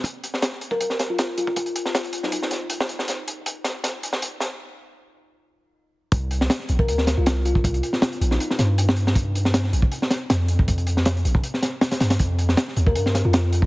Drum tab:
HH |x-x-x-x-x-x-x-x-|xxx-xxx-x-x-x-x-|x-x-x-x-x-x-x-x-|----------------|
SD |---ooo---oo-o---|---oo--o-oo--o-o|o-----o-o--o--o-|----------------|
BD |o------o-------o|o---------------|----------------|----------------|

HH |x-x-x-x-x-x-x-x-|xxx-xxx-x-x-x-x-|x-x-x-x-x-x-x-x-|xxx-xxx-x-x-xxxx|
SD |---ooo---oo-o---|---oo--o-oo--o-o|---ooo---oo-o---|---oo----oo-oooo|
BD |o------o-------o|o---------------|o------o-------o|o------o--------|

HH |x-x-x-x-x-x-x-x-|
SD |---ooo---oo-o---|
BD |o------o-------o|